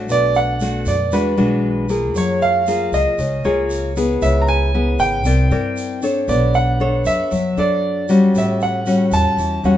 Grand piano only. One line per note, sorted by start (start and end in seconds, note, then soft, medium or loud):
0.12 0.37 D5 loud
0.36 0.89 F#5 medium
0.88 1.14 D5 medium
1.13 1.86 B4 medium
2.18 2.41 C#5 medium
2.42 2.95 F5 medium
2.94 3.47 D#5 medium
3.45 3.93 C#5 medium
4.22 4.41 E5 medium
4.42 4.48 A#5 medium
4.49 4.96 G#5 medium
5.00 5.99 G5 medium
6.29 6.53 D5 medium
6.55 7.03 F#5 loud
7.07 7.59 E5 medium
7.59 8.06 D5 medium
8.38 8.63 E5 medium
8.63 9.15 F#5 medium
9.14 9.61 A5 loud
9.65 9.78 F#5 medium